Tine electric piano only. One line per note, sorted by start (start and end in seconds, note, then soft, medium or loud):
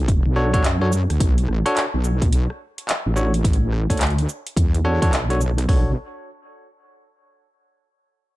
0.36 0.51 D4 loud
0.36 0.51 F#4 medium
0.36 0.51 A4 medium
0.36 0.51 C#5 loud
0.53 0.63 D4 loud
0.53 0.63 F#4 medium
0.53 0.63 A4 medium
0.53 0.63 C#5 loud
0.81 0.91 D4 medium
0.81 0.91 F#4 medium
0.81 0.91 A4 medium
0.81 0.91 C#5 loud
1.66 1.84 D4 loud
1.66 1.84 F#4 medium
1.66 1.84 A4 medium
1.66 1.84 C#5 loud
3.16 3.32 D4 medium
3.16 3.32 F#4 medium
3.16 3.32 A4 medium
3.16 3.32 C#5 medium
3.90 4.00 D4 medium
3.90 4.00 F#4 medium
3.90 4.00 A4 medium
3.90 4.00 C#5 medium
4.85 5.00 D4 loud
4.85 5.00 F#4 medium
4.85 5.00 A4 medium
4.85 5.00 C#5 loud
5.02 5.12 D4 loud
5.02 5.12 F#4 medium
5.02 5.12 A4 medium
5.02 5.12 C#5 loud
5.30 5.40 D4 medium
5.30 5.40 F#4 medium
5.30 5.40 A4 medium
5.30 5.40 C#5 loud
5.69 5.91 D4 medium
5.69 5.91 F#4 medium
5.69 5.91 A4 medium
5.69 5.91 C#5 medium